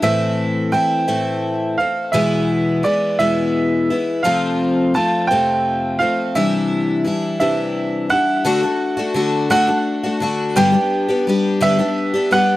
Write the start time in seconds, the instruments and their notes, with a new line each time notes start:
0.02 twelve-string acoustic guitar A2 E3 A3 C4 E4, grand piano E5
0.72 twelve-string acoustic guitar E3 A3 C4 E4, grand piano G5
1.08 twelve-string acoustic guitar A2 E3 A3 C4 E4
1.78 twelve-string acoustic guitar A3 C4, grand piano F5
2.12 twelve-string acoustic guitar E2 B2 E3 G#3 B3 E4, grand piano E5
2.83 twelve-string acoustic guitar E3 G#3 B3 E4, grand piano D5
3.19 twelve-string acoustic guitar E2 B2 E3 G#3 B3 E4, grand piano E5
3.90 twelve-string acoustic guitar E3 G#3 B3 E4
4.23 twelve-string acoustic guitar F2 C3 F3 A3 C4 F4, grand piano F5
4.94 twelve-string acoustic guitar F3 A3 C4 F4, grand piano A5
5.27 twelve-string acoustic guitar C4 F4, grand piano G5
5.32 twelve-string acoustic guitar F2 C3 F3 A3
5.99 twelve-string acoustic guitar A3 C4 F4, grand piano F5
6.03 twelve-string acoustic guitar F3
6.35 twelve-string acoustic guitar C3 E3 G3 D4 E4, grand piano E5
7.04 twelve-string acoustic guitar E3 G3 D4 E4
7.40 twelve-string acoustic guitar C3 E3 G3 D4 E4, grand piano E5
8.10 twelve-string acoustic guitar G3 D4 E4, grand piano F#5
8.45 twelve-string acoustic guitar D3 A3 D4 F#4
8.63 twelve-string acoustic guitar A3 D4 F#4
8.97 twelve-string acoustic guitar A3 D4 F#4
9.14 twelve-string acoustic guitar D3 A3 D4 F#4
9.50 twelve-string acoustic guitar D3 A3 D4 F#4, grand piano F#5
9.67 twelve-string acoustic guitar A3 D4 F#4
10.03 twelve-string acoustic guitar A3 D4 F#4
10.20 twelve-string acoustic guitar D3 A3 D4 F#4
10.56 twelve-string acoustic guitar G2 D3 G3 B3 D4 G4, grand piano G5
10.72 twelve-string acoustic guitar G3 B3 D4 G4
11.09 twelve-string acoustic guitar G3 B3 D4 G4
11.27 twelve-string acoustic guitar G3 B3 D4 G4
11.61 twelve-string acoustic guitar G2 D3 G3 B3 D4 G4, grand piano E5
11.79 twelve-string acoustic guitar G3 B3 D4 G4
12.14 twelve-string acoustic guitar G3 B3 D4 G4
12.31 twelve-string acoustic guitar G3 B3 D4 G4, grand piano F#5